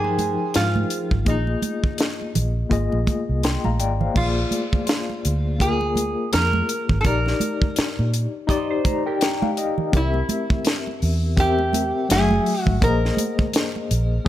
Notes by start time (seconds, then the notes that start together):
Already playing: G2 F3 D#4 G4 G#4 A#4 G5
0.04 G#4 C5, muted conga
0.18 closed hi-hat, high conga
0.54 G#2 F4, snare, closed hi-hat
0.76 muted conga, high conga
0.90 closed hi-hat
1.11 G#1, kick, low conga
1.25 A#1 A#3 F4 G#4 D#5, kick, closed hi-hat, low conga
1.29 D#4
1.47 muted conga
1.62 closed hi-hat, high conga
1.84 kick
1.98 snare, closed hi-hat, muted conga
2.21 muted conga
2.35 A#1, closed hi-hat, low conga
2.69 G#1 A#3 F4 G#4 D#5, kick, closed hi-hat
2.92 A#1, muted conga
3.07 kick, closed hi-hat, high conga
3.29 C2
3.43 G5 C6, snare, closed hi-hat
3.64 A#1 F5 A#5, muted conga, high conga
3.80 G#1 D5 G5, closed hi-hat
4.01 C5 F5, low conga
4.14 A#1 A#3 F4 G#4 D5, kick, crash, muted conga, low conga
4.51 closed hi-hat, high conga
4.73 kick, high conga
4.87 snare, closed hi-hat, muted conga
5.10 muted conga
5.25 D2, closed hi-hat
5.59 A#3 F4 G#4 A#4, kick, closed hi-hat
5.81 muted conga
5.96 closed hi-hat, high conga
6.33 F2 A#4, snare, closed hi-hat, muted conga
6.53 muted conga, high conga
6.69 closed hi-hat
6.89 G#1, kick, low conga
7.01 D#4 A4, closed hi-hat
7.05 A#1 G4 A#4 D5, kick, muted conga, low conga
7.26 snare, muted conga
7.40 closed hi-hat, high conga
7.62 kick, high conga
7.76 muted fingered electric bass stroke, snare, closed hi-hat
7.99 A#2, muted conga
8.14 closed hi-hat
8.47 D#4 G4 C5 D5 D#5, kick, closed hi-hat
8.71 C5
8.85 A#5, kick, closed hi-hat, high conga
9.06 G4 A#4 G5
9.21 G5, snare, closed hi-hat
9.42 F5, muted conga, high conga
9.57 D#5, closed hi-hat
9.78 low conga
9.92 C2 C4 G4 A#4 D5, kick, closed hi-hat, low conga
9.97 E4
10.02 E5
10.14 muted conga
10.29 closed hi-hat, high conga
10.50 kick, high conga
10.65 snare, closed hi-hat, muted conga
10.87 muted conga
11.02 E2, open hi-hat
11.37 C4 G4 A#4 E5, kick, closed hi-hat
11.59 muted conga
11.73 closed hi-hat, high conga
12.09 F#1 F#3 A3 F#4 G#4 E5, snare, closed hi-hat, muted conga
12.31 muted conga, high conga
12.46 open hi-hat
12.62 F#4
12.66 G#1, kick, low conga
12.80 A#1 A#3 G#4 A#4 C5 D#5, kick, closed hi-hat, muted conga, low conga
13.05 snare
13.17 closed hi-hat, high conga
13.39 kick, high conga
13.54 snare, closed hi-hat, muted conga
13.76 muted conga
13.91 A#1, closed hi-hat
14.24 A#3